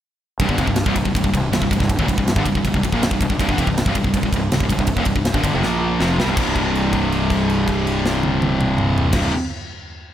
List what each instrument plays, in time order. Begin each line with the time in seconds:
0.40 fingered electric bass C1, distorted electric guitar C2 G2, kick, ride
0.49 fingered electric bass G1, distorted electric guitar G2 D3, kick
0.58 fingered electric bass F1, distorted electric guitar F2 C3, kick, ride
0.67 fingered electric bass C1, distorted electric guitar C2 G2, kick
0.76 snare, ride
0.86 fingered electric bass C1, distorted electric guitar C2 G2, kick
0.96 fingered electric bass C1, distorted electric guitar C2 G2, kick, ride
1.05 fingered electric bass C1, distorted electric guitar C2 G2, kick
1.15 fingered electric bass C1, distorted electric guitar C2 G2, kick, ride
1.24 fingered electric bass C1, distorted electric guitar C2 G2, kick
1.33 fingered electric bass C1, distorted electric guitar C2 G2, kick, ride
1.52 fingered electric bass C1, distorted electric guitar C2 G2, snare, ride
1.62 fingered electric bass C1, distorted electric guitar C2 G2, kick
1.71 fingered electric bass C1, distorted electric guitar C2 G2, kick, ride
1.80 fingered electric bass C1, distorted electric guitar C2 G2, kick, snare
1.89 kick, ride
1.99 fingered electric bass D#1, distorted electric guitar D#2 A#2, kick
2.08 fingered electric bass C1, distorted electric guitar C2 G2, kick, ride
2.18 fingered electric bass C1, distorted electric guitar C2 G2, kick
2.28 snare, ride
2.36 fingered electric bass G1, distorted electric guitar G2 D3, kick
2.46 fingered electric bass C1, distorted electric guitar C2 G2, kick, ride
2.55 fingered electric bass C1, distorted electric guitar C2 G2, kick
2.65 fingered electric bass C1, distorted electric guitar C2 G2, kick, ride
2.74 fingered electric bass C1, distorted electric guitar C2 G2, kick
2.83 fingered electric bass C1, distorted electric guitar C2 G2, kick, ride
2.92 fingered electric bass A#1, distorted electric guitar A#2 F3, kick
3.02 fingered electric bass C1, distorted electric guitar C2 G2, snare, ride
3.11 fingered electric bass C1, distorted electric guitar C2 G2, kick
3.21 fingered electric bass C1, distorted electric guitar C2 G2, kick, ride
3.30 fingered electric bass C1, distorted electric guitar C2 G2, kick
3.39 fingered electric bass C1, distorted electric guitar C2 G2, kick, ride
3.48 fingered electric bass G1, distorted electric guitar G2 D3, kick
3.58 fingered electric bass F1, distorted electric guitar F2 C3, kick, ride
3.67 fingered electric bass C1, distorted electric guitar C2 G2, kick
3.78 snare, ride
3.86 fingered electric bass C1, distorted electric guitar C2 G2, kick
3.95 fingered electric bass C1, distorted electric guitar C2 G2, kick, ride
4.04 fingered electric bass C1, distorted electric guitar C2 G2, kick
4.14 fingered electric bass C1, distorted electric guitar C2 G2, kick, ride
4.23 fingered electric bass C1, distorted electric guitar C2 G2, kick
4.32 fingered electric bass C1, distorted electric guitar C2, kick, ride
4.36 distorted electric guitar G2
4.51 fingered electric bass C1, distorted electric guitar C2 G2, snare, ride
4.60 fingered electric bass C1, distorted electric guitar C2, kick
4.65 distorted electric guitar G2
4.69 fingered electric bass C1, distorted electric guitar C2 G2, kick, ride
4.78 fingered electric bass C1, distorted electric guitar C2 G2, kick
4.87 kick, ride
4.96 fingered electric bass D#1, distorted electric guitar D#2 A#2, kick
5.05 fingered electric bass C1, distorted electric guitar C2 G2, kick, ride
5.16 fingered electric bass C1, distorted electric guitar C2 G2, kick
5.25 snare, ride
5.34 fingered electric bass G1, distorted electric guitar G2 D3, kick
5.43 fingered electric bass G1, distorted electric guitar G2 D3, kick, ride
5.54 fingered electric bass F1, distorted electric guitar F2 C3
5.63 fingered electric bass A#1, distorted electric guitar A#2 F3 A#3, snare
6.00 fingered electric bass F1, distorted electric guitar F2 C3 F3, snare
6.18 fingered electric bass C2, distorted electric guitar C3 G3, snare
6.27 fingered electric bass C1, distorted electric guitar C2 G2
6.35 fingered electric bass C1, distorted electric guitar C2 G2 C3, kick, crash
6.56 kick, crash
6.75 crash
6.93 kick, crash
7.12 crash
7.30 kick, crash
7.50 crash
7.68 kick, crash
7.87 crash
8.06 snare
8.23 high tom
8.42 high tom
8.61 mid tom
8.78 mid tom
8.98 floor tom
9.13 fingered electric bass C1, distorted electric guitar C2 G2, kick, snare, crash
9.17 distorted electric guitar C3